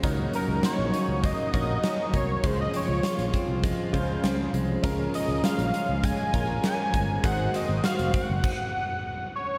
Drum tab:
CC |----------------|----------------|----------------|--------x-------|
HH |x-x-x-x-x-x-x-x-|x-x-xxx-x-x-x-x-|x-x-xxx-x-x-x-x-|x-x-xxx---------|
SD |----o-------o---|----o-------o---|----o-------o---|----o-----------|
BD |o-------o-o---o-|o-----o-o-o-----|o-------o-o---o-|o-----o-o-------|